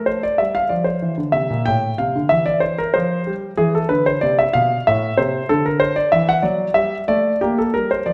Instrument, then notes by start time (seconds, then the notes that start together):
grand piano
Already playing: A3
0.06 C5
0.23 D5
0.38 G3 E5
0.55 F5
0.69 F3 D5
0.84 C5
1.02 E3
1.18 D3
1.32 C3 E5
1.50 A#2
1.66 A2 G5
1.98 C3 F5
2.16 D3
2.29 E3 E5
2.46 D5
2.60 C5
2.78 A#4
2.94 F3 C5
3.27 G3
3.57 E3 G#4
3.75 A4
3.89 D3 B4
4.06 C5
4.21 C3 D5
4.39 E5
4.53 B2 F5
4.87 A2 E5
5.17 C3 C5
5.49 D3 A4
5.66 A#4
5.80 C5
5.96 D5
6.12 E3 E5
6.29 F#5
6.42 F#3 D5
6.74 G3 E5
7.08 A3 D5
7.41 A#3 G4
7.58 A4
7.74 G3 A#4
7.91 C5
8.06 F3 D5